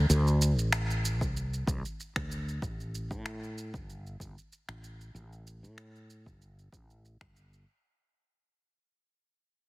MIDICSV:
0, 0, Header, 1, 3, 480
1, 0, Start_track
1, 0, Tempo, 631579
1, 71, Time_signature, 4, 2, 24, 8
1, 7362, End_track
2, 0, Start_track
2, 0, Title_t, "Fretless electric bass"
2, 0, Program_c, 0, 35
2, 73, Note_on_c, 0, 38, 92
2, 442, Note_off_c, 0, 38, 0
2, 442, Note_on_c, 0, 33, 77
2, 922, Note_off_c, 0, 33, 0
2, 922, Note_on_c, 0, 36, 87
2, 1244, Note_off_c, 0, 36, 0
2, 1273, Note_on_c, 0, 36, 88
2, 1381, Note_off_c, 0, 36, 0
2, 1642, Note_on_c, 0, 38, 74
2, 1965, Note_off_c, 0, 38, 0
2, 1993, Note_on_c, 0, 33, 85
2, 2362, Note_on_c, 0, 45, 78
2, 2374, Note_off_c, 0, 33, 0
2, 2841, Note_on_c, 0, 31, 85
2, 2853, Note_off_c, 0, 45, 0
2, 3164, Note_off_c, 0, 31, 0
2, 3194, Note_on_c, 0, 31, 84
2, 3301, Note_off_c, 0, 31, 0
2, 3560, Note_on_c, 0, 33, 72
2, 3884, Note_off_c, 0, 33, 0
2, 3911, Note_on_c, 0, 33, 89
2, 4279, Note_on_c, 0, 45, 78
2, 4291, Note_off_c, 0, 33, 0
2, 4761, Note_on_c, 0, 31, 86
2, 4772, Note_off_c, 0, 45, 0
2, 5084, Note_off_c, 0, 31, 0
2, 5112, Note_on_c, 0, 33, 77
2, 5448, Note_off_c, 0, 33, 0
2, 5480, Note_on_c, 0, 31, 81
2, 5804, Note_off_c, 0, 31, 0
2, 7362, End_track
3, 0, Start_track
3, 0, Title_t, "Drums"
3, 75, Note_on_c, 9, 82, 41
3, 151, Note_off_c, 9, 82, 0
3, 207, Note_on_c, 9, 82, 21
3, 283, Note_off_c, 9, 82, 0
3, 318, Note_on_c, 9, 82, 65
3, 394, Note_off_c, 9, 82, 0
3, 446, Note_on_c, 9, 82, 29
3, 522, Note_off_c, 9, 82, 0
3, 551, Note_on_c, 9, 26, 70
3, 558, Note_on_c, 9, 82, 39
3, 627, Note_off_c, 9, 26, 0
3, 634, Note_off_c, 9, 82, 0
3, 688, Note_on_c, 9, 82, 21
3, 764, Note_off_c, 9, 82, 0
3, 799, Note_on_c, 9, 82, 68
3, 875, Note_off_c, 9, 82, 0
3, 922, Note_on_c, 9, 36, 57
3, 928, Note_on_c, 9, 82, 29
3, 998, Note_off_c, 9, 36, 0
3, 1004, Note_off_c, 9, 82, 0
3, 1039, Note_on_c, 9, 82, 41
3, 1115, Note_off_c, 9, 82, 0
3, 1168, Note_on_c, 9, 82, 21
3, 1244, Note_off_c, 9, 82, 0
3, 1273, Note_on_c, 9, 36, 89
3, 1280, Note_on_c, 9, 82, 66
3, 1349, Note_off_c, 9, 36, 0
3, 1356, Note_off_c, 9, 82, 0
3, 1409, Note_on_c, 9, 82, 32
3, 1485, Note_off_c, 9, 82, 0
3, 1521, Note_on_c, 9, 82, 38
3, 1597, Note_off_c, 9, 82, 0
3, 1642, Note_on_c, 9, 26, 69
3, 1642, Note_on_c, 9, 36, 85
3, 1649, Note_on_c, 9, 82, 19
3, 1718, Note_off_c, 9, 26, 0
3, 1718, Note_off_c, 9, 36, 0
3, 1725, Note_off_c, 9, 82, 0
3, 1760, Note_on_c, 9, 82, 70
3, 1836, Note_off_c, 9, 82, 0
3, 1890, Note_on_c, 9, 82, 29
3, 1966, Note_off_c, 9, 82, 0
3, 1993, Note_on_c, 9, 36, 102
3, 2001, Note_on_c, 9, 82, 40
3, 2069, Note_off_c, 9, 36, 0
3, 2077, Note_off_c, 9, 82, 0
3, 2130, Note_on_c, 9, 82, 19
3, 2206, Note_off_c, 9, 82, 0
3, 2240, Note_on_c, 9, 82, 64
3, 2316, Note_off_c, 9, 82, 0
3, 2362, Note_on_c, 9, 36, 101
3, 2368, Note_on_c, 9, 82, 29
3, 2438, Note_off_c, 9, 36, 0
3, 2444, Note_off_c, 9, 82, 0
3, 2475, Note_on_c, 9, 26, 72
3, 2482, Note_on_c, 9, 82, 37
3, 2551, Note_off_c, 9, 26, 0
3, 2558, Note_off_c, 9, 82, 0
3, 2611, Note_on_c, 9, 82, 20
3, 2687, Note_off_c, 9, 82, 0
3, 2722, Note_on_c, 9, 82, 70
3, 2798, Note_off_c, 9, 82, 0
3, 2842, Note_on_c, 9, 36, 97
3, 2850, Note_on_c, 9, 82, 31
3, 2918, Note_off_c, 9, 36, 0
3, 2926, Note_off_c, 9, 82, 0
3, 2962, Note_on_c, 9, 82, 40
3, 3038, Note_off_c, 9, 82, 0
3, 3091, Note_on_c, 9, 82, 20
3, 3167, Note_off_c, 9, 82, 0
3, 3193, Note_on_c, 9, 36, 50
3, 3201, Note_on_c, 9, 82, 62
3, 3269, Note_off_c, 9, 36, 0
3, 3277, Note_off_c, 9, 82, 0
3, 3330, Note_on_c, 9, 82, 30
3, 3406, Note_off_c, 9, 82, 0
3, 3440, Note_on_c, 9, 82, 37
3, 3516, Note_off_c, 9, 82, 0
3, 3561, Note_on_c, 9, 26, 68
3, 3569, Note_on_c, 9, 82, 20
3, 3637, Note_off_c, 9, 26, 0
3, 3645, Note_off_c, 9, 82, 0
3, 3678, Note_on_c, 9, 82, 62
3, 3754, Note_off_c, 9, 82, 0
3, 3809, Note_on_c, 9, 82, 28
3, 3885, Note_off_c, 9, 82, 0
3, 3919, Note_on_c, 9, 82, 39
3, 3995, Note_off_c, 9, 82, 0
3, 4049, Note_on_c, 9, 82, 19
3, 4125, Note_off_c, 9, 82, 0
3, 4158, Note_on_c, 9, 82, 65
3, 4234, Note_off_c, 9, 82, 0
3, 4288, Note_on_c, 9, 82, 29
3, 4364, Note_off_c, 9, 82, 0
3, 4391, Note_on_c, 9, 26, 70
3, 4399, Note_on_c, 9, 82, 40
3, 4467, Note_off_c, 9, 26, 0
3, 4475, Note_off_c, 9, 82, 0
3, 4528, Note_on_c, 9, 82, 19
3, 4604, Note_off_c, 9, 82, 0
3, 4638, Note_on_c, 9, 82, 68
3, 4714, Note_off_c, 9, 82, 0
3, 4760, Note_on_c, 9, 36, 55
3, 4767, Note_on_c, 9, 82, 29
3, 4836, Note_off_c, 9, 36, 0
3, 4843, Note_off_c, 9, 82, 0
3, 4877, Note_on_c, 9, 82, 39
3, 4953, Note_off_c, 9, 82, 0
3, 5008, Note_on_c, 9, 82, 21
3, 5084, Note_off_c, 9, 82, 0
3, 5111, Note_on_c, 9, 36, 85
3, 5119, Note_on_c, 9, 82, 64
3, 5187, Note_off_c, 9, 36, 0
3, 5195, Note_off_c, 9, 82, 0
3, 5246, Note_on_c, 9, 82, 30
3, 5322, Note_off_c, 9, 82, 0
3, 5359, Note_on_c, 9, 82, 38
3, 5435, Note_off_c, 9, 82, 0
3, 5480, Note_on_c, 9, 26, 73
3, 5480, Note_on_c, 9, 36, 84
3, 5556, Note_off_c, 9, 26, 0
3, 5556, Note_off_c, 9, 36, 0
3, 5597, Note_on_c, 9, 82, 63
3, 5673, Note_off_c, 9, 82, 0
3, 5726, Note_on_c, 9, 82, 26
3, 5802, Note_off_c, 9, 82, 0
3, 7362, End_track
0, 0, End_of_file